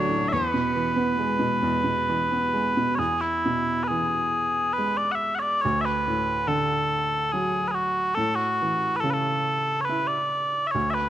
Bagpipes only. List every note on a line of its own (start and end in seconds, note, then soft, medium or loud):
0.00 0.28 C#5 medium
0.28 0.33 E5 medium
0.33 2.95 B4 medium
2.95 3.21 G#4 medium
2.95 2.99 C#5 medium
3.21 3.84 E4 medium
3.84 3.88 B4 medium
3.88 4.73 G#4 medium
4.73 4.97 B4 medium
4.97 5.12 D5 medium
5.12 5.35 E5 medium
5.12 5.15 F#5 medium
5.35 5.39 F#5 medium
5.39 5.41 C#5 medium
5.39 5.62 D5 medium
5.62 5.81 C#5 loud
5.81 5.85 E5 medium
5.85 6.48 B4 medium
6.48 7.32 A4 medium
7.32 7.68 G#4 medium
7.68 7.75 G#4 medium
7.68 7.71 B4 medium
7.75 8.15 F#4 medium
8.15 8.35 A4 loud
8.35 8.96 F#4 medium
8.96 9.10 A4 medium
8.96 9.00 B4 medium
9.10 9.81 A4 medium
9.10 9.12 B4 medium
9.81 10.07 B4 medium
9.81 9.85 C#5 medium
10.07 10.67 D5 medium
10.67 10.71 E5 medium
10.71 10.90 C#5 medium
10.90 11.09 B4 medium
10.90 10.94 E5 medium